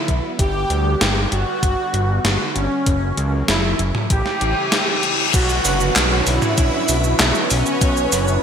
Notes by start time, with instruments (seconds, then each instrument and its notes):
Already playing: analog synth pad D3 F#3 B3 F#4 C#5, supersaw synth E4
0.08 analog synth bass B1, kick, closed hi-hat
0.39 analog synth bass G1, analog synth pad G3, supersaw synth G4, kick, closed hi-hat
0.70 analog synth bass D2, closed hi-hat
1.01 analog synth bass G1, snare, closed hi-hat
1.32 analog synth bass G1, supersaw synth F#4, closed hi-hat
1.63 analog synth bass G1, kick, closed hi-hat
1.94 analog synth bass G1, closed hi-hat
2.25 analog synth bass G1, snare, closed hi-hat
2.55 analog synth bass G1, supersaw synth C#4, closed hi-hat
2.86 analog synth bass F#1, analog synth pad C#3 F#3 A#3, kick, closed hi-hat
3.17 analog synth bass C#2, closed hi-hat
3.48 analog synth bass F#1, supersaw synth E4, snare, closed hi-hat
3.79 analog synth bass F#1, closed hi-hat
3.95 mid tom
4.10 analog synth bass A1, analog synth pad C#3 E3 G3 A3 E4, supersaw synth G4, kick, closed hi-hat, reverse cymbal
4.26 snare
4.41 analog synth bass A1, closed hi-hat
4.72 snare, closed hi-hat
5.03 closed hi-hat
5.34 analog synth bass B1, analog synth pad D3 F#3 B3 F#4 B4, supersaw synth F#4, string machine F#5, kick, closed hi-hat, crash, downlifter, cabasa
5.49 cabasa
5.65 analog synth bass F#1, analog polysynth C#4 D4 F#4 B4, open hi-hat, cabasa
5.80 cabasa
5.96 analog synth bass B1, snare, clap, closed hi-hat, cabasa
6.11 analog polysynth C#4 D4 F#4 C#5
6.27 analog synth bass B1, supersaw synth E4, string machine E5, open hi-hat, cabasa
6.42 mid tom, cabasa
6.58 analog synth bass B1, kick, closed hi-hat, cabasa
6.73 analog polysynth C#4 D4 F#4 C#5
6.89 analog synth bass B1, open hi-hat, cabasa
7.04 cabasa
7.19 analog synth bass B1, analog polysynth C#4 D4 F#4 B4, snare, clap, closed hi-hat, cabasa
7.35 cabasa
7.50 analog synth bass B1, supersaw synth C#4, string machine C#5, open hi-hat, cabasa
7.66 analog polysynth B3 C#4 F#4 B4, cabasa
7.81 analog synth bass B1, analog synth pad E4, kick, closed hi-hat, cabasa
7.97 cabasa
8.12 analog synth bass F#1, analog polysynth C#4 D4 F#4 B4, open hi-hat, cabasa
8.28 cabasa